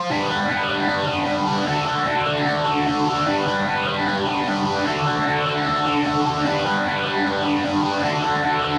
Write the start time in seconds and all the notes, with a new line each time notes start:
Already playing: F3 F4
0.10 G3 B3 D4 B4
0.29 G3 B3 D4 B4
0.49 G3 B3 D4 B4
0.69 G3 B3 D4 B4
0.88 G3 B3 D4 B4
1.06 G3 B3 D4 B4
1.25 G3 B3 D4 B4
1.46 G3 B3 D4 B4
1.66 D3 D4 F#4 A4
1.85 D3 D4 F#4 A4
2.06 D3 D4 F#4 A4
2.26 D3 D4 F#4 A4
2.46 D3 D4 F#4 A4
2.65 D3 D4 F#4 A4
2.86 D3 D4 F#4 A4
3.07 D3 D4 F#4 A4
3.27 G3 B3 D4 B4
3.47 G3 B3 D4 B4
3.66 G3 B3 D4 B4
3.87 G3 B3 D4 B4
4.08 G3 B3 D4 B4
4.27 G3 B3 D4 B4
4.48 G3 B3 D4 B4
4.65 G3 B3 D4 B4
4.86 D3 D4 F#4 A4
5.07 D3 D4 F#4 A4
5.26 D3 D4 F#4 A4
5.45 D3 D4 F#4 A4
5.67 D3 D4 F#4 A4
5.85 D3 D4 F#4 A4
6.06 D3 D4 F#4 A4
6.26 D3 D4 F#4 A4
6.46 G3 B3 D4 B4
6.65 G3 B3 D4 B4
6.86 G3 B3 D4 B4
7.04 G3 B3 D4 B4
7.25 G3 B3 D4 B4
7.44 G3 B3 D4 B4
7.64 G3 B3 D4 B4
7.83 G3 B3 D4 B4
8.03 D3 D4 F#4 A4
8.24 D3 D4 F#4 A4
8.44 D3 D4 F#4 A4
8.63 D3 D4 F#4 A4